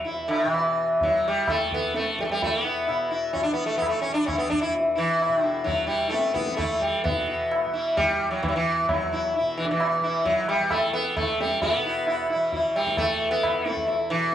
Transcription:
0.00 2.28 E2 soft
0.00 0.45 B2 soft
0.00 1.07 E3 medium
0.04 0.28 E4 soft
0.04 tabla tin medium
0.28 0.50 D3 medium
0.28 tabla na medium
0.46 2.88 B2 medium
0.50 1.02 E3 medium
0.54 tabla na medium
1.01 1.26 F#3 medium
1.01 tabla tin medium
1.01 tabla ge medium
1.07 1.67 E3 medium
1.28 1.50 G3 medium
1.48 1.73 A3 medium
1.48 tabla na medium
1.48 tabla ge medium
1.67 3.47 E3 medium
1.67 tabla ge soft
1.74 1.95 B3 medium
1.94 2.19 A3 medium
1.94 tabla te medium
2.06 tabla te medium
2.19 2.24 G3 medium
2.19 tabla ke medium
2.25 4.68 E2 medium
2.25 2.30 A3 medium
2.30 2.43 G3 medium
2.30 tabla te medium
2.42 2.64 A3 medium
2.42 tabla tin medium
2.42 tabla ge medium
2.64 3.09 B3 medium
2.64 2.86 E4 soft
2.87 5.28 B2 medium
2.87 3.09 E4 soft
2.87 tabla na medium
3.11 3.33 E4 soft
3.33 3.43 C#4 medium
3.33 tabla tin medium
3.33 tabla ge medium
3.43 4.09 E3 medium
3.43 3.53 D4 medium
3.54 3.66 B3 medium
3.66 3.77 A3 medium
3.78 3.88 B3 medium
3.82 tabla na medium
3.82 tabla ge medium
3.89 4.01 A3 medium
4.02 4.13 C#4 medium
4.09 5.86 E3 medium
4.14 4.26 D4 medium
4.26 4.38 C#4 medium
4.26 tabla na medium
4.26 tabla ge medium
4.38 4.50 B3 medium
4.50 4.61 D4 medium
4.50 tabla ge soft
4.62 4.73 E4 medium
4.69 8.82 E2 soft
4.75 tabla tin medium
4.96 5.45 E3 medium
4.96 5.17 E4 soft
5.19 5.41 E4 soft
5.19 tabla na medium
5.28 7.07 B2 medium
5.42 5.69 D3 medium
5.42 5.62 E4 soft
5.64 5.87 F#3 medium
5.64 5.85 E4 soft
5.64 tabla tin medium
5.64 tabla ge medium
5.86 6.48 E3 soft
5.86 6.12 G3 medium
5.86 6.07 E4 soft
6.08 6.34 A3 medium
6.08 6.32 E4 soft
6.14 tabla te medium
6.25 tabla te medium
6.33 6.56 B3 medium
6.33 6.55 E4 soft
6.33 tabla ke medium
6.47 7.66 E3 medium
6.47 tabla te medium
6.56 6.82 A3 medium
6.56 6.79 E4 soft
6.56 tabla na medium
6.56 tabla ge medium
6.81 7.03 G3 medium
6.81 tabla ge soft
7.04 9.40 B2 medium
7.04 7.70 B3 medium
7.04 tabla tin loud
7.04 tabla ge medium
7.27 7.49 E4 soft
7.52 tabla na medium
7.66 8.23 E3 medium
7.73 7.95 E4 soft
7.97 8.30 G3 medium
7.97 tabla tin medium
7.97 tabla ge medium
8.23 10.01 E3 medium
8.31 8.42 F#3 medium
8.43 8.48 E3 medium
8.43 tabla na medium
8.43 tabla ge medium
8.48 8.55 F#3 medium
8.56 8.88 E3 medium
8.83 11.17 E2 medium
8.89 9.31 F#3 medium
8.89 tabla na medium
8.89 tabla ge medium
9.12 9.33 E4 soft
9.12 tabla ge medium
9.34 9.57 E4 soft
9.34 tabla tin medium
9.41 11.76 B2 medium
9.58 9.64 E3 medium
9.64 9.71 D3 medium
9.71 10.25 E3 medium
9.80 tabla na medium
10.01 10.59 E3 medium
10.01 10.25 E4 soft
10.25 10.47 F#3 medium
10.25 tabla tin medium
10.25 tabla ge medium
10.48 10.72 G3 medium
10.48 tabla na medium
10.59 12.36 E3 medium
10.70 10.93 A3 medium
10.70 tabla na medium
10.70 tabla ge medium
10.93 11.16 B3 medium
10.93 tabla te medium
11.17 13.54 E2 medium
11.17 11.38 A3 medium
11.17 tabla na medium
11.17 tabla ge medium
11.41 11.61 G3 medium
11.41 tabla te medium
11.62 12.26 B3 medium
11.62 tabla tin loud
11.62 tabla ge medium
11.77 14.11 B2 medium
11.85 12.05 E4 soft
12.07 12.28 E4 soft
12.07 tabla na medium
12.30 12.51 E4 soft
12.30 tabla na medium
12.36 12.94 E3 medium
12.52 12.74 E4 soft
12.52 tabla tin medium
12.52 tabla ge medium
12.76 12.98 G3 medium
12.76 tabla na medium
12.87 tabla ke medium
12.94 14.35 E3 medium
12.94 13.30 A3 loud
12.94 tabla na medium
12.94 tabla ge medium
13.31 13.72 B3 loud
13.43 tabla na medium
13.43 tabla ge medium
13.54 14.35 E2 medium
13.65 13.86 E4 soft
13.65 tabla te medium
13.72 13.95 A3 loud
13.77 tabla ge medium
13.87 14.08 E4 soft
13.87 tabla tin medium
14.10 14.35 B2 medium
14.10 14.35 E3 medium

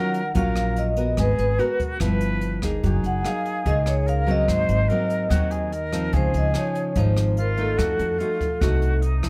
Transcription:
0.00 0.33 D#3 medium
0.00 0.21 F#3 medium
0.00 0.21 C#4 medium
0.00 0.21 F4 medium
0.00 0.34 A#4 loud
0.00 0.39 F#5 loud
0.14 closed hi-hat soft
0.34 1.14 A#1 medium
0.34 1.15 A#2 medium
0.34 0.94 F#3 medium
0.34 0.94 C#4 medium
0.34 0.94 F4 medium
0.34 0.87 A#4 medium
0.34 0.79 F5 medium
0.34 kick medium
0.34 closed hi-hat medium
0.56 cross-stick medium
0.56 closed hi-hat soft
0.76 1.20 D#5 medium
0.76 closed hi-hat soft
0.96 1.56 B3 medium
0.96 1.56 F#4 medium
0.96 1.56 A#4 medium
0.96 closed hi-hat soft
1.17 1.37 G#1 medium
1.17 1.98 G#3 medium
1.17 1.60 G#4 loud
1.17 1.39 B4 medium
1.17 kick medium
1.17 cross-stick medium
1.17 closed hi-hat medium
1.38 1.58 G#1 medium
1.38 1.78 B4 medium
1.38 closed hi-hat soft
1.58 1.97 B3 medium
1.58 2.01 F#4 medium
1.58 1.97 F#4 medium
1.58 1.97 A#4 medium
1.58 closed hi-hat soft
1.80 kick medium
1.80 closed hi-hat soft
2.00 2.79 G1 medium
2.00 2.81 G2 medium
2.00 2.59 F3 medium
2.00 2.59 B3 medium
2.00 2.59 E4 medium
2.00 2.62 B4 loud
2.00 kick medium
2.00 cross-stick medium
2.00 closed hi-hat medium
2.20 closed hi-hat soft
2.41 closed hi-hat soft
2.62 3.21 A#3 medium
2.62 3.21 D#4 medium
2.62 3.22 G#4 medium
2.62 kick soft
2.62 cross-stick medium
2.62 closed hi-hat soft
2.83 3.02 F#1 medium
2.83 3.64 F#3 medium
2.83 4.08 G#4 loud
2.83 kick medium
2.83 closed hi-hat medium
3.03 3.23 F#1 medium
3.03 3.26 F#5 medium
3.03 closed hi-hat soft
3.25 3.63 A#3 medium
3.25 3.63 D#4 medium
3.25 3.63 G#4 medium
3.25 3.67 F5 medium
3.25 cross-stick medium
3.25 closed hi-hat soft
3.45 closed hi-hat soft
3.65 4.44 C#2 medium
3.65 4.46 C#3 medium
3.65 4.24 A#3 soft
3.65 4.24 D#4 medium
3.65 4.24 G#4 medium
3.65 3.86 D#5 medium
3.65 kick medium
3.65 closed hi-hat medium
3.86 4.08 C#5 medium
3.86 cross-stick medium
3.86 closed hi-hat soft
4.06 4.49 A#4 loud
4.06 4.29 F5 medium
4.06 closed hi-hat soft
4.27 4.86 F#3 medium
4.27 4.86 A#3 medium
4.27 4.86 C4 medium
4.27 closed hi-hat soft
4.31 5.90 D#5 medium
4.48 4.67 G#1 medium
4.48 5.29 G#2 medium
4.48 4.90 C5 loud
4.48 kick medium
4.48 cross-stick medium
4.48 closed hi-hat medium
4.69 4.88 G#1 medium
4.69 closed hi-hat soft
4.88 5.27 F#3 medium
4.88 5.28 A#3 medium
4.88 5.28 C4 medium
4.88 5.31 A#4 loud
4.88 closed hi-hat soft
5.10 closed hi-hat soft
5.29 6.09 D#2 medium
5.29 6.11 D#3 medium
5.29 5.71 F#3 medium
5.29 5.71 A#3 medium
5.29 5.72 C4 medium
5.29 5.52 F#4 medium
5.29 kick medium
5.29 cross-stick medium
5.29 closed hi-hat medium
5.51 5.74 G#4 medium
5.51 closed hi-hat soft
5.72 6.15 A#4 loud
5.72 closed hi-hat soft
5.92 6.51 F3 medium
5.92 6.51 C4 medium
5.92 6.51 D#4 medium
5.92 cross-stick medium
5.92 closed hi-hat soft
6.13 6.32 C#2 loud
6.13 6.94 C#3 medium
6.13 7.10 G#4 loud
6.13 6.36 C5 medium
6.13 kick medium
6.13 closed hi-hat medium
6.34 6.53 C#2 medium
6.34 6.46 D#5 medium
6.34 closed hi-hat soft
6.54 6.92 F3 medium
6.54 6.93 D#4 medium
6.54 6.98 C#5 medium
6.54 cross-stick medium
6.54 closed hi-hat soft
6.75 closed hi-hat soft
6.96 7.74 G#1 medium
6.96 7.76 G#2 medium
6.96 7.37 F3 medium
6.96 7.37 C4 medium
6.96 7.37 D#4 medium
6.96 7.40 C5 medium
6.96 kick medium
6.96 closed hi-hat medium
7.17 cross-stick medium
7.17 closed hi-hat soft
7.36 7.79 F4 medium
7.36 closed hi-hat soft
7.40 7.60 A#4 medium
7.57 8.16 A3 medium
7.57 8.16 D#4 medium
7.57 closed hi-hat soft
7.61 9.00 A4 medium
7.77 7.98 F2 medium
7.77 8.59 F3 medium
7.77 8.20 F#4 medium
7.77 kick medium
7.77 cross-stick medium
7.77 closed hi-hat medium
7.99 8.18 F2 medium
7.99 closed hi-hat soft
8.18 8.46 A3 medium
8.18 8.46 D#4 medium
8.18 8.62 F4 medium
8.18 8.47 F#4 medium
8.18 closed hi-hat soft
8.41 kick soft
8.41 closed hi-hat soft
8.60 9.29 C2 medium
8.60 9.29 C3 medium
8.60 9.02 A3 soft
8.60 9.02 D#4 medium
8.60 9.03 F#4 medium
8.60 9.02 F#4 medium
8.60 kick medium
8.60 cross-stick medium
8.60 closed hi-hat medium
8.82 closed hi-hat soft
9.01 9.29 D#4 medium
9.01 closed hi-hat soft
9.23 9.29 F3 medium
9.23 9.29 C4 medium
9.23 9.29 E4 medium
9.23 kick medium
9.23 cross-stick medium
9.23 closed hi-hat soft

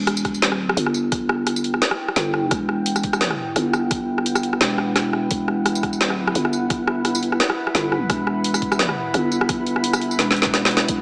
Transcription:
0.00 0.46 E1 medium
0.00 11.02 E4 medium
0.00 11.02 B4 medium
0.07 cross-stick medium
0.07 closed hi-hat medium
0.17 5.77 G5 medium
0.17 tambourine medium
0.25 11.02 F#5 medium
0.25 kick medium
0.25 cross-stick medium
0.25 closed hi-hat soft
0.34 tambourine soft
0.42 0.76 D#1 medium
0.42 snare loud
0.42 closed hi-hat medium
0.52 cross-stick medium
0.69 cross-stick medium
0.77 1.81 G1 loud
0.77 closed hi-hat medium
0.86 cross-stick medium
0.94 tambourine soft
1.12 kick loud
1.12 cross-stick medium
1.12 closed hi-hat medium
1.29 cross-stick medium
1.47 cross-stick medium
1.47 closed hi-hat medium
1.56 tambourine medium
1.64 closed hi-hat soft
1.74 cross-stick medium
1.82 snare loud
1.82 closed hi-hat medium
1.91 cross-stick medium
2.08 cross-stick medium
2.16 2.50 G1 medium
2.16 snare medium
2.16 closed hi-hat medium
2.34 cross-stick soft
2.51 3.55 E1 medium
2.51 kick loud
2.51 cross-stick medium
2.51 closed hi-hat medium
2.69 cross-stick medium
2.86 closed hi-hat medium
2.96 cross-stick medium
2.96 tambourine medium
3.03 kick medium
3.03 closed hi-hat soft
3.13 cross-stick medium
3.13 tambourine soft
3.21 snare loud
3.21 closed hi-hat medium
3.31 cross-stick medium
3.56 4.60 G1 loud
3.56 cross-stick medium
3.56 closed hi-hat medium
3.73 cross-stick medium
3.73 tambourine soft
3.91 kick loud
3.91 cross-stick soft
3.91 closed hi-hat medium
4.18 cross-stick soft
4.26 closed hi-hat medium
4.35 cross-stick medium
4.35 tambourine medium
4.43 closed hi-hat soft
4.53 cross-stick soft
4.61 5.30 E1 loud
4.61 snare loud
4.61 closed hi-hat medium
4.78 cross-stick soft
4.96 cross-stick medium
4.96 snare medium
4.96 closed hi-hat medium
5.13 cross-stick soft
5.31 6.04 E1 loud
5.31 kick loud
5.31 closed hi-hat medium
5.48 cross-stick medium
5.66 cross-stick medium
5.66 closed hi-hat medium
5.75 11.02 B5 medium
5.75 tambourine medium
5.83 kick medium
5.83 cross-stick soft
5.83 closed hi-hat soft
5.93 tambourine soft
6.01 6.34 D#1 loud
6.01 snare loud
6.01 closed hi-hat medium
6.10 cross-stick soft
6.27 cross-stick medium
6.35 7.39 G1 loud
6.35 closed hi-hat medium
6.45 cross-stick medium
6.53 tambourine soft
6.70 kick loud
6.70 cross-stick medium
6.70 closed hi-hat medium
6.87 cross-stick medium
7.05 cross-stick medium
7.05 closed hi-hat medium
7.15 tambourine medium
7.23 closed hi-hat soft
7.32 cross-stick medium
7.40 snare loud
7.40 closed hi-hat medium
7.50 cross-stick medium
7.67 cross-stick medium
7.75 8.09 G1 loud
7.75 snare medium
7.75 closed hi-hat medium
7.92 cross-stick medium
8.10 9.13 E1 loud
8.10 kick loud
8.10 cross-stick medium
8.10 closed hi-hat medium
8.27 cross-stick medium
8.44 closed hi-hat medium
8.54 cross-stick medium
8.54 tambourine medium
8.62 kick medium
8.62 closed hi-hat soft
8.72 cross-stick medium
8.72 tambourine soft
8.79 snare loud
8.79 closed hi-hat medium
8.89 cross-stick medium
9.14 10.18 G1 loud
9.14 cross-stick medium
9.14 closed hi-hat medium
9.32 tambourine soft
9.41 cross-stick medium
9.49 kick loud
9.49 cross-stick medium
9.49 closed hi-hat medium
9.67 closed hi-hat soft
9.76 cross-stick medium
9.84 closed hi-hat medium
9.93 cross-stick medium
9.93 tambourine medium
10.01 closed hi-hat soft
10.11 tambourine soft
10.19 10.88 E1 medium
10.19 snare medium
10.19 closed hi-hat medium
10.31 snare medium
10.36 closed hi-hat soft
10.42 snare medium
10.46 kick medium
10.54 snare medium
10.54 closed hi-hat medium
10.65 snare loud
10.71 closed hi-hat soft
10.77 snare loud
10.88 11.02 E1 medium
10.88 kick loud
10.88 closed hi-hat medium

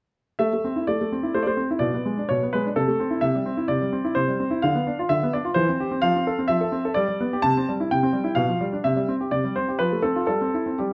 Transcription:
0.39 0.51 A3 soft
0.39 0.83 E5 medium
0.53 0.65 A3 soft
0.64 0.77 C4 soft
0.76 0.89 E4 soft
0.87 1.00 A3 soft
0.87 1.35 D5 medium
1.01 1.13 A3 soft
1.12 1.25 C4 soft
1.23 1.36 E4 soft
1.34 1.45 A3 soft
1.34 1.42 C5 medium
1.43 1.59 A3 soft
1.43 1.50 D5 medium
1.47 1.68 C5 medium
1.57 1.70 C4 soft
1.71 1.83 E4 soft
1.79 1.93 B2 soft
1.79 2.28 D5 medium
1.94 2.07 B3 soft
2.05 2.18 G#3 soft
2.18 2.30 D4 soft
2.29 2.42 B2 soft
2.29 2.43 C#5 medium
2.43 2.55 B3 soft
2.53 2.66 G#3 soft
2.53 2.67 B4 medium
2.66 2.77 D4 soft
2.76 2.88 C3 soft
2.76 3.23 A4 medium
2.88 3.01 A3 soft
3.00 3.12 C4 soft
3.10 3.23 E4 soft
3.21 3.34 C3 medium
3.21 3.65 E5 medium
3.35 3.48 G3 soft
3.46 3.59 C4 soft
3.57 3.70 E4 soft
3.68 3.81 C3 soft
3.68 4.16 D5 medium
3.82 3.94 G3 soft
3.92 4.05 C4 soft
4.05 4.17 E4 soft
4.15 4.28 C3 soft
4.15 4.63 C5 medium
4.28 4.41 G3 soft
4.40 4.52 C4 soft
4.51 4.63 E4 soft
4.62 4.75 D3 medium
4.62 5.10 F5 medium
4.75 4.87 B3 soft
4.87 4.99 D4 soft
4.99 5.11 F4 soft
5.09 5.21 D3 soft
5.09 5.33 E5 medium
5.23 5.35 B3 soft
5.33 5.46 D4 soft
5.33 5.47 D5 medium
5.45 5.57 F4 soft
5.54 5.68 E3 medium
5.54 6.02 C5 medium
5.69 5.81 C4 soft
5.80 5.92 G4 soft
5.91 6.03 C4 soft
6.02 6.14 F3 medium
6.02 6.45 F5 medium
6.16 6.28 C4 soft
6.27 6.39 A4 soft
6.39 6.51 C4 soft
6.48 6.61 F3 soft
6.48 6.91 E5 medium
6.61 6.73 A4 soft
6.72 6.85 C4 soft
6.85 6.97 A4 soft
6.94 7.07 G3 medium
6.94 7.39 D5 medium
7.21 7.33 B3 soft
7.33 7.44 G4 soft
7.42 7.55 C3 medium
7.42 7.71 A5 medium
7.57 7.69 C4 soft
7.69 7.80 G3 soft
7.80 7.92 E4 soft
7.91 8.03 C3 soft
7.91 8.34 G5 medium
8.03 8.15 C4 soft
8.13 8.26 G3 soft
8.24 8.37 E4 soft
8.35 8.48 B2 medium
8.35 8.64 F5 medium
8.49 8.61 F3 soft
8.61 8.73 G3 soft
8.73 8.85 D4 soft
8.84 8.96 C3 medium
8.84 9.13 E5 medium
8.96 9.09 G3 soft
9.08 9.21 C4 soft
9.21 9.33 G4 soft
9.31 9.43 C3 soft
9.31 9.55 D5 medium
9.44 9.57 G3 soft
9.56 9.69 C4 soft
9.56 9.80 C5 medium
9.68 9.80 G4 soft
9.79 9.92 F3 soft
9.79 10.01 B4 medium
9.92 10.05 A3 soft
10.02 10.17 C4 soft
10.02 10.25 A4 medium
10.16 10.28 F4 soft
10.27 10.40 G3 soft
10.27 10.78 A4 medium
10.41 10.54 C4 soft
10.54 10.67 E4 soft
10.66 10.79 C4 soft
10.78 10.91 G3 soft
10.78 10.93 G4 soft

